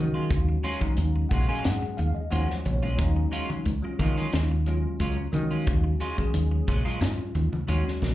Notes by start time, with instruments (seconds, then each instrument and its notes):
Already playing: fretless electric bass D#3, tine electric piano F#3 G#3 C#4 F#4
0.14 clean electric guitar G#3 C#4 F4
0.30 fretless electric bass D#2, kick, closed hi-hat
0.49 muted clean electric guitar stroke
0.64 clean electric guitar F#3 G#3 C#4 F4, closed hi-hat
0.80 tine electric piano F#3 G#3 C#4 D#4, muted clean electric guitar stroke, muted fretless electric bass stroke, kick, high conga
0.97 fretless electric bass D#2, closed hi-hat
1.16 muted clean electric guitar stroke
1.29 fretless electric bass A#1, clean electric guitar F#3 G#3 C#4 F4, tine electric piano F#5, kick, closed hi-hat, low conga
1.47 tine electric piano F#3 G#3 C#4 G#4 G#5, clean electric guitar F#3 G#3 C#4 F4, muted fretless electric bass stroke
1.64 fretless electric bass G#2, tine electric piano F#5, muted clean electric guitar stroke, snare, closed hi-hat
1.82 muted clean electric guitar stroke, muted fretless electric bass stroke
1.97 fretless electric bass D#2, tine electric piano F5, muted clean electric guitar stroke, closed hi-hat
2.14 tine electric piano D#5, muted fretless electric bass stroke
2.30 fretless electric bass D#2, tine electric piano F3 F#3 G#3 C#4 F#5, clean electric guitar F#3 G#3 C#4 F4, closed hi-hat
2.49 muted clean electric guitar stroke, snare
2.65 fretless electric bass A#1, tine electric piano C#5, muted clean electric guitar stroke, closed hi-hat, high conga, low conga
2.82 fretless electric bass A#1, clean electric guitar G#3 C#4 F4
2.97 fretless electric bass D#2, tine electric piano F#3 G#3 C#4 D#4, kick, closed hi-hat
3.16 muted clean electric guitar stroke
3.31 clean electric guitar F#3 G#3 C#4 F4, closed hi-hat
3.50 muted clean electric guitar stroke, high conga
3.65 fretless electric bass C#2, closed hi-hat
3.82 tine electric piano F#3 G#3 C#4 F4, muted fretless electric bass stroke, muted clean electric guitar stroke
3.99 fretless electric bass D#3, clean electric guitar F#3 G#3 C#4 F4, kick, closed hi-hat, low conga
4.17 clean electric guitar F#3 G#3 C#4 F4
4.32 fretless electric bass D#2, muted clean electric guitar stroke, snare, closed hi-hat
4.51 muted clean electric guitar stroke
4.66 tine electric piano F#3 G#3 C#4 F4, muted clean electric guitar stroke, closed hi-hat
5.00 fretless electric bass C#2, clean electric guitar F#3 G#3 C#4 F4, closed hi-hat
5.18 muted clean electric guitar stroke
5.32 fretless electric bass D#3, tine electric piano F#3 G#3 C#4 F#4, muted clean electric guitar stroke, closed hi-hat, high conga, low conga
5.51 clean electric guitar G#3 C#4 F4
5.67 fretless electric bass D#2, kick, closed hi-hat
5.84 muted clean electric guitar stroke
6.00 clean electric guitar F#3 G#3 C#4 F4, closed hi-hat
6.18 tine electric piano F#3 G#3 C#4 G#4, muted fretless electric bass stroke, muted clean electric guitar stroke, kick, high conga
6.34 fretless electric bass D#2, closed hi-hat
6.51 muted clean electric guitar stroke
6.68 fretless electric bass A#1, clean electric guitar F#3 G#3 C#4 F4, kick, closed hi-hat, low conga
6.84 tine electric piano F#3 G#3 C#4 F4, clean electric guitar F#3 G#3 C#4 F4, muted fretless electric bass stroke
7.01 fretless electric bass G#2, muted clean electric guitar stroke, snare, closed hi-hat
7.18 muted clean electric guitar stroke, muted fretless electric bass stroke
7.35 fretless electric bass D#2, muted clean electric guitar stroke, closed hi-hat, high conga
7.52 muted fretless electric bass stroke, low conga
7.68 fretless electric bass D#2, clean electric guitar F#3 G#3 C#4 F4, tine electric piano F#3 G#3 C#4 F#4, closed hi-hat
7.85 muted clean electric guitar stroke, snare
8.02 fretless electric bass A#1, muted clean electric guitar stroke, snare, high conga, low conga